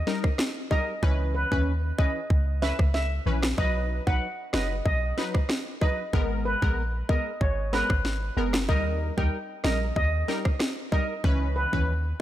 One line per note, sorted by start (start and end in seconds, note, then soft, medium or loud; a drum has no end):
0.00 0.21 D#5 medium
0.07 0.28 G3 medium
0.07 0.29 D#4 medium
0.07 0.29 A#4 medium
0.07 snare medium
0.24 kick medium
0.24 cross-stick medium
0.38 cross-stick medium
0.38 snare loud
0.71 0.92 G3 medium
0.71 0.92 D#4 medium
0.71 0.93 A#4 medium
0.71 0.83 D#5 medium
0.71 kick medium
1.02 1.45 C#2 loud
1.02 1.47 E3 medium
1.02 1.48 C#4 medium
1.02 1.48 B4 loud
1.02 kick medium
1.35 1.47 B4 medium
1.51 1.92 D#2 medium
1.51 1.72 E3 medium
1.51 1.72 C#4 medium
1.51 1.72 B4 medium
1.51 kick medium
1.98 2.20 E3 medium
1.98 2.20 C#4 medium
1.98 2.20 B4 medium
1.98 2.10 D#5 medium
1.98 kick loud
2.30 2.73 C#2 loud
2.30 kick medium
2.62 2.84 E3 medium
2.62 2.84 C#4 medium
2.62 2.84 B4 medium
2.62 2.74 E5 medium
2.62 snare medium
2.79 3.20 C#2 medium
2.79 kick medium
2.79 cross-stick medium
2.94 3.40 E5 medium
2.94 snare medium
3.26 3.54 A#1 medium
3.26 3.47 E3 medium
3.26 3.48 C#4 medium
3.26 3.48 B4 medium
3.42 cross-stick loud
3.42 snare loud
3.58 4.00 B1 loud
3.58 4.03 F#3 medium
3.58 4.03 D#4 medium
3.58 4.03 B4 loud
3.58 3.70 D#5 loud
3.58 kick loud
4.07 4.20 B1 medium
4.07 4.27 F#3 medium
4.07 4.27 D#4 medium
4.07 4.27 B4 medium
4.07 4.18 F#5 medium
4.07 kick medium
4.53 4.81 F#1 medium
4.53 4.75 F#3 medium
4.53 4.75 D#4 medium
4.53 4.75 B4 medium
4.53 4.66 D#5 medium
4.53 cross-stick medium
4.53 snare loud
4.86 5.13 B1 loud
4.86 5.32 D#5 loud
4.86 kick medium
5.17 5.39 F#3 medium
5.17 5.39 D#4 medium
5.17 5.39 B4 medium
5.17 snare medium
5.34 kick medium
5.34 cross-stick medium
5.49 cross-stick medium
5.49 snare loud
5.81 6.03 F#3 medium
5.81 6.03 D#4 medium
5.81 6.03 B4 medium
5.81 5.94 D#5 medium
5.81 kick loud
6.13 6.56 G#1 loud
6.13 6.58 G#3 medium
6.13 6.58 B3 medium
6.13 6.58 A#4 loud
6.13 kick loud
6.45 6.57 B4 medium
6.62 7.03 A#1 loud
6.62 6.82 G#3 medium
6.62 6.82 B3 medium
6.62 6.83 A#4 medium
6.62 kick medium
7.09 7.30 G#3 medium
7.09 7.31 B3 medium
7.09 7.31 A#4 medium
7.09 7.21 D#5 medium
7.09 kick loud
7.41 7.83 G#1 loud
7.41 7.53 C#5 medium
7.41 kick loud
7.73 7.94 G#3 medium
7.73 7.94 B3 medium
7.73 7.95 A#4 medium
7.73 7.85 B4 medium
7.73 snare medium
7.90 8.30 G#1 medium
7.90 kick medium
7.90 cross-stick loud
8.05 snare medium
8.36 8.70 F#1 loud
8.36 8.58 G#3 medium
8.36 8.58 B3 medium
8.36 8.58 A#4 medium
8.53 cross-stick medium
8.53 snare loud
8.68 9.11 D#2 loud
8.68 9.13 G3 medium
8.68 9.13 D#4 medium
8.68 9.14 A#4 loud
8.68 8.81 D#5 medium
8.68 kick loud
9.17 9.31 D#2 medium
9.17 9.38 G3 medium
9.17 9.38 D#4 medium
9.17 9.38 A#4 medium
9.17 9.28 G5 medium
9.17 kick medium
9.64 9.92 A#1 medium
9.64 9.86 G3 medium
9.64 9.86 D#4 medium
9.64 9.86 A#4 medium
9.64 9.76 D#5 medium
9.64 cross-stick medium
9.64 snare loud
9.96 10.24 D#2 loud
9.96 10.42 D#5 medium
9.96 kick loud
10.28 10.50 G3 medium
10.28 10.50 D#4 medium
10.28 10.50 A#4 medium
10.28 snare medium
10.45 kick medium
10.45 cross-stick loud
10.60 cross-stick medium
10.60 snare loud
10.92 11.13 G3 medium
10.92 11.14 D#4 medium
10.92 11.14 A#4 medium
10.92 11.04 D#5 medium
10.92 kick loud
11.24 11.66 C#2 loud
11.24 11.69 E3 medium
11.24 11.69 C#4 medium
11.24 11.69 B4 loud
11.24 kick loud
11.56 11.68 B4 medium
11.72 12.14 D#2 medium
11.72 11.93 E3 medium
11.72 11.93 C#4 medium
11.72 11.93 B4 medium
11.72 kick medium